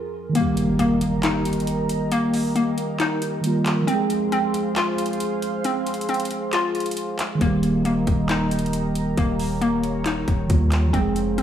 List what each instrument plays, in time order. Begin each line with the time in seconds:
Already playing: ambient pad F2 F3 G#4 A#4, tine electric piano F3 C4 G#4, synth pluck C4 F4
0.29 tine electric piano D#3 G3
0.35 synth pluck A#3, tine electric piano A#3, ambient pad G4 A#4 D#5 A#5, closed hi-hat, impact
0.41 tine electric piano G4
0.57 closed hi-hat
0.79 synth pluck A#3, closed hi-hat
1.01 closed hi-hat
1.23 synth pluck D#4, clap, closed hi-hat
1.45 closed hi-hat
1.53 closed hi-hat
1.60 closed hi-hat
1.67 closed hi-hat
1.89 closed hi-hat
2.12 synth pluck A#3, closed hi-hat
2.34 open hi-hat
2.56 synth pluck A#3, closed hi-hat
2.78 closed hi-hat
3.00 synth pluck D#4, clap, closed hi-hat
3.22 closed hi-hat
3.41 tine electric piano D#3 G3 A#3, closed hi-hat
3.47 tine electric piano F4
3.66 clap, closed hi-hat
3.82 tine electric piano F3 G#3
3.87 synth pluck C4, tine electric piano C4, ambient pad G#4 C5 F5 C6, closed hi-hat
3.94 tine electric piano G#4
4.10 closed hi-hat
4.32 synth pluck C4, closed hi-hat
4.54 closed hi-hat
4.76 synth pluck F4, clap, closed hi-hat
4.98 closed hi-hat
5.06 closed hi-hat
5.13 closed hi-hat
5.20 closed hi-hat
5.42 closed hi-hat
5.64 synth pluck C4, closed hi-hat
5.86 closed hi-hat, open hi-hat
5.94 closed hi-hat
6.01 closed hi-hat
6.09 synth pluck C4, closed hi-hat
6.14 closed hi-hat
6.20 closed hi-hat
6.25 closed hi-hat
6.31 closed hi-hat
6.53 synth pluck F4, clap, closed hi-hat
6.75 closed hi-hat
6.80 closed hi-hat
6.86 closed hi-hat
6.91 closed hi-hat
6.97 closed hi-hat
7.19 clap, closed hi-hat
7.35 tine electric piano D#3 G3
7.41 808-style bass D#1, synth pluck A#3, tine electric piano A#3, ambient pad G4 A#4 D#5 A#5, kick, closed hi-hat
7.47 tine electric piano G4
7.63 closed hi-hat
7.85 synth pluck A#3, closed hi-hat
8.07 808-style bass D#1, kick, closed hi-hat
8.29 synth pluck D#4, clap, closed hi-hat
8.51 closed hi-hat
8.59 closed hi-hat
8.66 closed hi-hat
8.73 closed hi-hat
8.95 closed hi-hat
9.17 808-style bass D#1, synth pluck A#3, ambient pad C#5, kick, closed hi-hat
9.39 open hi-hat
9.61 synth pluck A#3, closed hi-hat
9.84 closed hi-hat
10.06 synth pluck D#4, clap, closed hi-hat
10.28 808-style bass D#1, kick, closed hi-hat
10.47 808-style bass D#2, tine electric piano D#3 G3 A#3, kick, closed hi-hat
10.53 tine electric piano F4
10.72 clap, closed hi-hat
10.88 tine electric piano F3 G#3
10.93 808-style bass F1, synth pluck C4, tine electric piano C4, ambient pad G#4 C5 F5 C6, kick, closed hi-hat
11.00 tine electric piano G#4
11.16 closed hi-hat
11.38 synth pluck C4, closed hi-hat